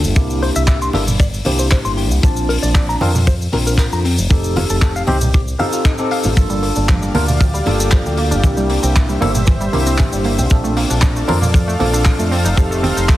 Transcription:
Already playing: A#3 D4 F4 A4
0.04 G1, cabasa
0.15 C2 A#3 D4 E4 G4, kick, cabasa
0.30 cabasa
0.43 C5, open hi-hat
0.56 C2 E5, cabasa
0.68 E5, kick, clap, cabasa
0.82 C6, cabasa
0.93 G1 A#3 D4 E4 G4 A4, open hi-hat, high conga
1.07 low conga, cabasa
1.20 D5, kick, cabasa
1.34 cabasa
1.45 C2 A#3 D4 E4 G4 C5, open hi-hat, high conga
1.59 C5, cabasa
1.71 C5, kick, clap, cabasa
1.85 G1 C6, cabasa
1.97 G4, open hi-hat
2.11 C2, cabasa
2.23 A#1 C4 D4 F4 A5, kick, cabasa
2.36 cabasa
2.49 A#4, open hi-hat
2.63 A#1 D5, cabasa
2.75 D5, kick, clap, cabasa
2.89 A#5, cabasa
3.01 F2 C4 D4 F4 A#4, open hi-hat, high conga
3.15 low conga, cabasa
3.27 C5, kick, cabasa
3.42 cabasa
3.52 A#1 C4 D4 F4 A#4, open hi-hat, high conga
3.67 A#4, cabasa
3.78 A#4, kick, clap, cabasa
3.92 F2 A#5, cabasa
4.05 C4, open hi-hat
4.18 F1, cabasa
4.29 F1 C4 D#4 G4 A4, kick, cabasa
4.44 cabasa
4.56 F4, open hi-hat, high conga
4.69 F1 A4, cabasa
4.82 A4, kick, clap, cabasa
4.96 F5, cabasa
5.07 C2 C4 D#4 G4 C5, open hi-hat, high conga
5.21 low conga, cabasa
5.34 G4, kick, cabasa
5.48 cabasa
5.59 C4 D#4 G4 A4 F5, open hi-hat, high conga
5.73 F4, cabasa
5.85 D#4, kick, clap, cabasa
5.98 C4 D#4 G4 A4, cabasa
6.11 F5, open hi-hat
6.24 A1 F4, high conga, cabasa
6.36 G1 F3 A#3 D4 F4 G4 A4 D5 F5, kick, cabasa
6.50 G3, cabasa
6.63 A#3, open hi-hat
6.75 G1 D4, cabasa
6.88 F3, kick, clap, cabasa
7.02 G3, cabasa
7.14 D2 A#3 D4 F4 A#4, open hi-hat, high conga
7.28 A#3, low conga, cabasa
7.40 F3, kick, cabasa
7.54 G3, cabasa
7.65 G1 A#3 D4 F4 A4, open hi-hat, high conga
7.80 D4, cabasa
7.91 F3, kick, clap, cabasa
8.06 D2 G3, cabasa
8.17 A#3, open hi-hat
8.31 G1 D4, cabasa
8.43 C2 E3 A#3 D4 E4 G4 C5 E5, kick, cabasa
8.57 G3, cabasa
8.70 A#3, open hi-hat
8.83 C2 C4, cabasa
8.96 E3, kick, clap, cabasa
9.09 G3, cabasa
9.21 G1 A#3 D4 E4 A4, open hi-hat, high conga
9.35 A#3, low conga, cabasa
9.47 E3, kick, cabasa
9.60 G3, cabasa
9.72 C2 A#3 D4 E4 G4, open hi-hat, high conga
9.86 C4, cabasa
9.98 E3, kick, clap, cabasa
10.12 G1 G3, cabasa
10.24 A#3, open hi-hat
10.39 C2 C4, cabasa
10.50 A#1 F3 C4 D4 F4 A4 D5 F5, kick, cabasa
10.64 A3, cabasa
10.77 A#3, open hi-hat
10.90 A#1 D4, cabasa
11.02 F3, kick, clap, cabasa
11.16 A3, cabasa
11.27 F2 A#3 C4 D4 F4 A#4, open hi-hat, high conga
11.42 A#3, low conga, cabasa
11.54 F3, kick, cabasa
11.68 A3, cabasa
11.79 A#1 A#3 C4 D4 F4 A4, open hi-hat, high conga
11.93 D4, cabasa
12.05 F3, kick, clap, cabasa
12.19 F2 A3, cabasa
12.31 C4 D#5 C6, open hi-hat
12.45 F1 D#4, cabasa
12.56 F1 F3 C4 D#4 G4 A4, kick, cabasa
12.71 A3, cabasa
12.83 C4, open hi-hat, high conga
12.96 F1 D#4, cabasa
13.09 F3, kick, clap, cabasa

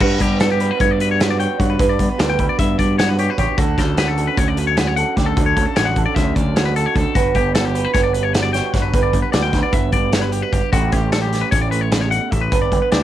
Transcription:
0.00 G2 F#4 B4, kick, crash
0.20 G2 B3 G4, kick, closed hi-hat
0.40 F#4 A4, snare, closed hi-hat
0.52 G4
0.60 B4, closed hi-hat
0.71 B4
0.80 G2 B3 C#5, kick, closed hi-hat
0.91 D5
1.00 G3 B4, closed hi-hat
1.11 C#5
1.20 F#4 B4, snare, closed hi-hat
1.30 D5
1.40 C#5 G5, closed hi-hat
1.59 G2 C#5 F#5, kick, closed hi-hat
1.70 B4
1.79 G2 B4, kick, closed hi-hat
1.89 D5
1.99 G2 B3, kick, closed hi-hat
2.09 B4
2.18 D2 F#4 D5, snare, closed hi-hat
2.30 G5
2.39 D2 B4, kick, closed hi-hat
2.49 D5
2.59 G2 B3 E5, kick, closed hi-hat
2.78 G2 G3 D5, kick, closed hi-hat
2.98 F#4 C#5, snare, closed hi-hat
3.09 B4
3.19 G4 C#5, closed hi-hat
3.30 B4
3.38 A1 G2 G4 C#5, kick, closed hi-hat
3.58 D2 D3 F#4 A4, kick, closed hi-hat
3.78 D2 C#4 A4, kick, snare, closed hi-hat
3.98 F#4 B4, snare, closed hi-hat
4.08 A4
4.18 A4, closed hi-hat
4.28 B4
4.38 D2 C#4 C#5, kick, closed hi-hat
4.48 D5
4.57 F#3 B4, closed hi-hat
4.67 C#5
4.77 F#4 B4, snare, closed hi-hat
4.87 C#5
4.97 A4 F#5, closed hi-hat
5.16 D2 D3 G4 D5, kick, snare, closed hi-hat
5.26 A4
5.36 D2 D3 A4, kick, closed hi-hat
5.46 C#5
5.57 D2 C#4, kick, closed hi-hat
5.66 A4
5.76 A1 F#4 C#5, snare, closed hi-hat
5.85 F#5
5.96 A1 A4, kick, closed hi-hat
6.06 D5
6.15 D2 C#4 E5, kick, snare, closed hi-hat
6.35 D2 F#3 D5, kick, closed hi-hat
6.56 F#4 C#5, snare, closed hi-hat
6.66 B4
6.76 A4, closed hi-hat
6.86 C#5
6.95 D2 D3 A4, kick, closed hi-hat
7.15 G1 G2 F#4 B4, kick, closed hi-hat
7.35 G1 B3 G4, kick, closed hi-hat
7.55 F#4 A4, snare, closed hi-hat
7.65 G4
7.75 B4, closed hi-hat
7.85 B4
7.94 G1 B3 C#5, kick, snare, closed hi-hat
8.03 D5
8.13 G3 B4, closed hi-hat
8.23 C#5
8.33 F#4 B4, snare, closed hi-hat
8.43 D5
8.53 C#5 G5, snare, closed hi-hat
8.73 G1 G2 C#5 F#5, kick, snare, closed hi-hat
8.82 B4
8.94 G1 G2 B4, kick, closed hi-hat
9.03 D5
9.13 G1 B3, kick, closed hi-hat
9.22 B4
9.32 D2 F#4 D5, snare, closed hi-hat
9.42 G5
9.53 D2 B4, kick, snare, closed hi-hat
9.63 D5
9.73 G1 B3 E5, kick, closed hi-hat
9.92 G1 G3 D5, kick, closed hi-hat
10.13 C#5, snare, closed hi-hat
10.21 B4
10.32 G4, closed hi-hat
10.42 B4
10.52 G1 G2 G4, kick, closed hi-hat
10.72 A1 A2 A3 C#4 E4 F#4 G4, kick, closed hi-hat
10.92 A1 C#4 G4, kick, closed hi-hat
11.12 D4 A4, snare, closed hi-hat
11.22 E4 G4
11.33 G4, snare, closed hi-hat
11.41 B4
11.51 A1 C#4 C#5, kick, closed hi-hat
11.62 D5
11.71 A3 B4, closed hi-hat
11.81 C#5
11.91 C#3 B4, snare, closed hi-hat
12.01 C#5
12.11 B2 F#5, closed hi-hat
12.31 A1 A2 E5, kick, closed hi-hat
12.41 B4
12.51 G1 G2 B4, kick, closed hi-hat
12.62 D5
12.72 G1 B3, kick, closed hi-hat
12.82 B4
12.92 D2 E4 D5, snare, closed hi-hat

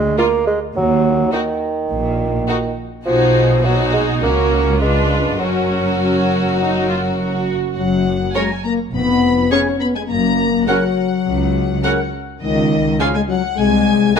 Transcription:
Already playing: G#3
0.18 A#3 F4 A#4
0.47 G#3
0.76 D#2 F#3
1.32 D#3 D#4 F#4 A#4
1.90 A#1 A#2
2.48 D#4 F#4 A#4
3.06 B1 B2 F3 D#4 F#4 G#4
3.64 F#3 D#4 F#4 G#4
3.93 G#3
4.21 C#2 A#3 C#4 F#4 A#4
4.80 G#3 D4 F4 B4
5.39 F#1 F#2 F#3 C#4 F#4 A#4
5.99 C#4
6.59 D#4
6.89 F4
7.19 F#4
7.77 F#1 F#2 F#3 F#5
8.34 C#3 G#3 C#4 F#4 A#4 C#5 G#5 A#5
8.64 A#3 A#5
8.93 F1 F2 B3 B5
9.51 C#3 C#4 G#4 C#5 G#5 C#6
9.80 B3 B5
9.95 G#3 G#5
10.08 F#1 F#2 A#3 A#5
10.67 C#3 F#3 C#4 F#4 A#4 F#5
11.26 C#2
11.84 C#3 C#4 F#4 A#4 F#5
12.42 C#2 D#3 D#5
13.00 C#3 F3 C#4 F4 G#4 F5 G#5
13.15 G#3 G#5
13.28 F#3 F#5
13.56 C2 G#3 G#5
14.16 D#3 A#3 G#4 G#5 A#5

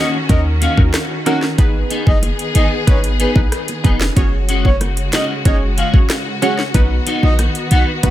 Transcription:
Already playing: D#3 A#3 C#4 F#4
0.29 D#2 C#4 D#4 F#4 A#4 D#5, kick, closed hi-hat, high bongo
0.45 muted clean electric guitar stroke
0.61 A#3 C#4 F#4 F5, closed hi-hat
0.77 D#2 C#4 D#4 F#4 A#4, kick
0.94 cross-stick, snare, closed hi-hat
1.26 A#3 C#4 D#4 F#4 A#4 F#5, closed hi-hat, low bongo
1.42 snare
1.58 G#1 B3 D#4 G#4 B4, kick, closed hi-hat, high bongo
1.90 B3 D#4 G#4, closed hi-hat
2.07 F#1 D#5, kick, high bongo
2.23 closed hi-hat, high bongo
2.39 closed hi-hat
2.55 G#1 B3 D#4 G#4 D#5, closed hi-hat, high bongo
2.87 G#1 B3 D#4 G#4 B4 C#5, kick, closed hi-hat, high bongo
3.03 muted clean electric guitar stroke, closed hi-hat
3.19 B3 D#4 G#4 B4, closed hi-hat
3.35 A#1 B3 D#4 G#4 B4, kick, high bongo
3.52 cross-stick, closed hi-hat
3.68 closed hi-hat, high bongo
3.84 F1 B3 D#4 G#4 B4, kick, closed hi-hat, low bongo
4.01 snare
4.16 F#1 C#3 G#3 C#4 F#4 G#4 C#5, kick, closed hi-hat, high bongo
4.49 G#3 C#4 F#4, closed hi-hat
4.65 C#5, kick, high bongo
4.81 cross-stick, closed hi-hat, high bongo
4.97 closed hi-hat
5.13 G#3 C#4 F#4 D#5, snare, closed hi-hat, high bongo
5.45 F#1 C#4 F#4 G#4 C#5 D#5, kick, closed hi-hat, high bongo
5.61 muted clean electric guitar stroke
5.77 G#3 C#4 F#4 F5, closed hi-hat
5.94 G#1 C#4 F#4 G#4 C#5, kick
6.10 cross-stick, snare, closed hi-hat
6.42 G#3 C#4 F#4 G#4 C#5 F#5, closed hi-hat, low bongo
6.59 snare
6.74 B1 D#3 B3 D#4 F#4 B4, kick, closed hi-hat, high bongo
7.06 B3 D#4 F#4, closed hi-hat
7.23 A#1 D#5, high bongo
7.39 cross-stick, closed hi-hat, high bongo
7.55 closed hi-hat
7.71 B1 B3 D#4 F#4 F#5, closed hi-hat, high bongo
8.03 B1 B3 D#4 F#4 B4 F#5, kick, closed hi-hat, high bongo

